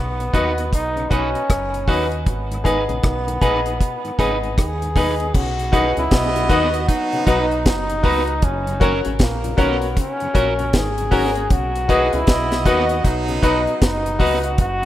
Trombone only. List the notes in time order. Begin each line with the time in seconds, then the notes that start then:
Already playing: B3
0.75 D#4
1.12 C#4
2.29 B3
4.60 G#4
5.37 F#4
5.99 E4
6.52 F#4
7.29 D#4
7.67 D#4
8.44 C#4
9.22 A#3
9.62 B3
10.00 C#4
10.76 G#4
11.53 F#4
12.16 E4
12.69 F#4
13.46 D#4
13.84 D#4
14.46 F#4
14.61 F#4